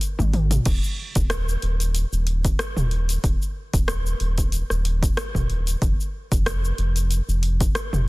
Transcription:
0.01 open hi-hat medium
0.01 shaker soft
0.19 0.59 G#1 medium
0.19 kick medium
0.19 high tom soft
0.19 shaker soft
0.34 open hi-hat soft
0.34 mid tom medium
0.51 mid tom medium
0.51 open hi-hat soft
0.51 shaker medium
0.65 0.78 D#1 medium
0.65 kick loud
0.65 open hi-hat medium
0.65 crash loud
0.65 shaker medium
0.84 shaker soft
1.15 1.56 D#1 medium
1.15 kick loud
1.15 open hi-hat soft
1.15 shaker medium
1.30 cross-stick loud
1.30 open hi-hat medium
1.30 shaker medium
1.49 shaker soft
1.62 2.04 D#1 medium
1.62 open hi-hat soft
1.80 open hi-hat soft
1.80 shaker medium
1.95 open hi-hat medium
1.95 shaker medium
2.13 2.53 D#1 medium
2.13 shaker soft
2.27 open hi-hat medium
2.45 kick medium
2.45 open hi-hat soft
2.45 shaker medium
2.59 cross-stick loud
2.59 open hi-hat medium
2.59 shaker medium
2.77 3.17 D#1 medium
2.77 mid tom medium
2.77 shaker soft
2.91 open hi-hat soft
3.09 open hi-hat soft
3.09 shaker medium
3.24 3.36 D#1 loud
3.24 kick loud
3.24 open hi-hat medium
3.24 shaker medium
3.42 shaker soft
3.73 4.14 D#1 medium
3.73 kick loud
3.73 open hi-hat soft
3.73 shaker medium
3.88 cross-stick loud
3.88 open hi-hat medium
3.88 shaker medium
4.06 shaker soft
4.20 4.62 D#1 medium
4.20 open hi-hat soft
4.38 kick medium
4.38 open hi-hat soft
4.38 shaker medium
4.52 open hi-hat medium
4.52 shaker medium
4.70 5.11 D#1 medium
4.70 cross-stick soft
4.70 shaker soft
4.85 open hi-hat medium
5.03 kick loud
5.03 open hi-hat soft
5.03 shaker medium
5.17 cross-stick loud
5.17 open hi-hat medium
5.17 shaker medium
5.35 5.75 D#1 medium
5.35 kick medium
5.35 mid tom medium
5.35 shaker soft
5.50 open hi-hat soft
5.67 open hi-hat soft
5.67 shaker medium
5.82 5.94 F1 loud
5.82 kick loud
5.82 open hi-hat medium
5.82 shaker medium
6.00 shaker soft
6.32 6.72 F1 medium
6.32 kick loud
6.32 open hi-hat soft
6.32 shaker medium
6.46 cross-stick loud
6.46 open hi-hat medium
6.46 shaker medium
6.65 shaker soft
6.78 7.20 F1 medium
6.78 open hi-hat soft
6.96 open hi-hat soft
6.96 shaker medium
7.11 open hi-hat soft
7.11 shaker medium
7.29 7.69 F1 loud
7.29 shaker soft
7.43 open hi-hat medium
7.60 kick loud
7.60 open hi-hat soft
7.60 shaker medium
7.75 cross-stick loud
7.75 open hi-hat medium
7.75 shaker medium
7.93 8.08 F1 medium
7.93 mid tom medium
7.93 shaker soft

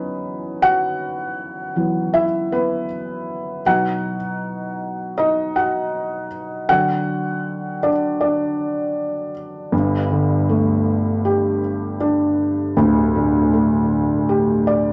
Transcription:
0.00 1.76 E3 soft
0.00 1.76 F#3 soft
0.00 1.77 B3 medium
0.00 3.67 C#4 medium
0.00 3.67 D#4 medium
0.00 0.58 B4 medium
0.00 3.67 C#5 medium
0.00 3.67 D#5 medium
0.62 2.10 F#4 medium
0.62 2.18 F#5 medium
1.76 2.86 E3 soft
1.76 2.86 F#3 soft
1.76 2.51 B3 soft
2.14 2.23 E4 medium
2.14 2.22 E5 medium
2.52 3.62 B3 medium
2.52 3.62 B4 medium
3.66 4.16 B2 soft
3.66 4.16 F#3 soft
3.66 4.17 D#4 medium
3.66 5.14 F#4 medium
3.66 5.14 F#5 medium
5.18 5.53 D#4 medium
5.18 5.53 D#5 medium
5.56 6.28 F#4 medium
5.56 6.28 F#5 medium
6.69 7.79 D3 soft
6.69 7.79 F#3 soft
6.69 7.80 C4 medium
6.69 7.80 F#4 medium
6.69 7.86 F#5 loud
7.83 7.92 D4 medium
7.83 7.92 D5 medium
8.21 9.31 D4 medium
8.21 9.31 D5 medium
9.72 12.72 G1 medium
9.72 12.73 G2 medium
10.11 11.59 D3 medium
10.49 11.97 A3 medium
11.25 12.73 G4 medium
12.00 13.49 D4 medium
12.77 14.93 D1 medium
12.77 14.93 D2 medium
13.15 14.63 D3 medium
13.53 14.93 A3 medium
14.29 14.93 G4 medium
14.67 14.93 D5 medium

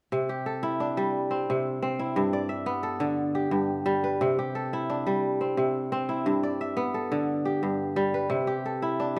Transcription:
0.12 1.49 C3 medium
0.29 1.71 G4 medium
0.46 1.78 A4 medium
0.63 1.99 E4 medium
0.80 2.48 D4 medium
0.97 2.22 G3 medium
1.31 1.82 C4 medium
1.50 2.22 C3 medium
1.82 2.72 C4 medium
1.99 3.56 E4 medium
2.16 3.50 G2 medium
2.33 3.44 D5 medium
2.49 3.52 E5 medium
2.66 4.27 B3 medium
2.83 4.15 A4 medium
3.00 4.26 D3 medium
3.35 4.38 G4 medium
3.51 4.26 G2 medium
3.86 4.26 G3 medium
4.04 5.27 B4 medium
4.21 5.56 C3 medium
4.39 5.80 G4 medium
4.55 5.87 A4 medium
4.73 6.08 E4 medium
4.90 6.58 D4 medium
5.07 6.31 G3 medium
5.41 5.92 C4 medium
5.57 6.31 C3 medium
5.92 6.83 C4 medium
6.09 7.66 E4 medium
6.26 7.61 G2 medium
6.43 7.54 D5 medium
6.61 7.64 E5 medium
6.77 8.36 B3 medium
6.94 8.26 A4 medium
7.12 8.36 D3 medium
7.45 8.47 G4 medium
7.63 8.36 G2 medium
7.96 8.36 G3 medium
8.14 9.19 B4 medium
8.30 9.19 C3 medium
8.47 9.19 G4 medium
8.66 9.19 A4 medium
8.82 9.19 E4 medium
9.00 9.19 D4 medium

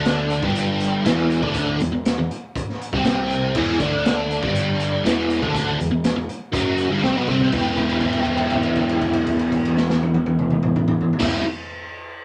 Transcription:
0.00 0.39 D2 medium
0.00 0.43 D3 medium
0.00 0.44 D4 loud
0.05 snare loud
0.05 closed hi-hat medium
0.30 closed hi-hat medium
0.42 1.01 G1 medium
0.42 1.05 G2 medium
0.42 1.05 G3 loud
0.42 kick loud
0.55 closed hi-hat loud
0.80 closed hi-hat medium
1.05 1.40 E1 medium
1.05 1.42 E2 medium
1.05 1.42 E3 loud
1.05 snare loud
1.05 closed hi-hat loud
1.30 closed hi-hat medium
1.42 1.77 D2 loud
1.42 1.79 D3 medium
1.42 1.80 D4 medium
1.42 kick loud
1.54 kick medium
1.54 closed hi-hat medium
1.79 1.91 E1 medium
1.79 1.91 E2 medium
1.79 closed hi-hat medium
1.92 2.16 E1 medium
1.92 2.12 E2 medium
2.05 snare loud
2.05 closed hi-hat loud
2.18 2.29 E1 medium
2.18 2.30 E2 medium
2.31 closed hi-hat medium
2.56 kick loud
2.56 closed hi-hat loud
2.70 snare soft
2.81 closed hi-hat medium
2.92 3.51 C2 medium
2.92 3.55 C3 medium
2.92 3.55 C4 loud
2.92 kick loud
3.05 snare loud
3.05 closed hi-hat medium
3.30 closed hi-hat medium
3.54 3.78 E1 loud
3.54 3.79 E2 medium
3.54 3.79 E3 loud
3.54 kick loud
3.54 crash loud
3.79 4.38 D2 loud
3.79 4.41 D3 medium
3.79 4.42 D4 loud
3.79 kick loud
3.79 closed hi-hat medium
4.05 snare loud
4.05 closed hi-hat medium
4.31 closed hi-hat medium
4.42 5.01 G1 loud
4.42 5.04 G2 medium
4.42 5.04 G3 medium
4.42 kick loud
4.55 closed hi-hat loud
4.80 closed hi-hat medium
5.04 5.39 E1 medium
5.04 5.41 E2 medium
5.04 5.42 E3 loud
5.04 snare loud
5.04 closed hi-hat medium
5.30 closed hi-hat medium
5.42 5.77 D2 loud
5.42 5.79 D3 medium
5.42 5.79 D4 medium
5.42 kick loud
5.55 kick loud
5.55 closed hi-hat loud
5.78 5.90 E1 medium
5.78 5.90 E2 medium
5.78 closed hi-hat medium
5.91 6.14 E1 medium
5.91 6.11 E2 medium
6.04 snare loud
6.04 closed hi-hat loud
6.16 6.28 E1 medium
6.16 6.29 E2 medium
6.29 closed hi-hat medium
6.52 6.88 F#1 medium
6.52 6.89 F#2 medium
6.52 6.90 F#3 loud
6.52 kick loud
6.52 closed hi-hat medium
6.77 closed hi-hat medium
6.89 7.01 G1 medium
6.89 7.03 G2 medium
6.89 7.03 G3 loud
7.01 7.12 C2 medium
7.01 7.15 C3 medium
7.01 7.16 C4 loud
7.01 snare medium
7.13 7.26 B1 medium
7.13 7.28 B2 medium
7.17 7.28 B3 loud
7.28 7.51 C2 loud
7.28 7.52 C3 medium
7.28 7.53 C4 loud
7.28 kick medium
7.40 kick medium
7.52 11.10 E1 medium
7.52 11.14 E3 medium
7.52 11.15 B3 loud
7.52 11.15 E4 loud
7.52 kick loud
7.52 crash medium
7.57 11.16 G4 loud
7.76 kick medium
7.76 crash soft
7.89 crash soft
8.00 kick medium
8.00 crash soft
8.13 crash soft
8.25 kick medium
8.25 crash soft
8.37 crash soft
8.50 kick medium
8.50 crash medium
8.63 crash soft
8.75 kick medium
8.75 crash soft
8.89 crash soft
9.01 kick medium
9.01 crash medium
9.13 crash soft
9.27 kick medium
9.27 crash medium
9.39 crash soft
9.52 kick medium
9.52 crash medium
9.65 crash soft
9.77 snare medium
9.90 snare medium
10.03 high tom medium
10.14 high tom medium
10.26 high tom medium
10.39 mid tom medium
10.50 mid tom medium
10.63 mid tom medium
10.76 mid tom loud
10.88 mid tom medium
11.01 floor tom loud
11.13 floor tom medium
11.19 11.41 E1 medium
11.19 11.42 E3 medium
11.19 11.43 B3 loud
11.19 11.44 E4 loud
11.19 kick loud
11.19 snare medium
11.19 crash loud
11.23 11.44 G4 loud

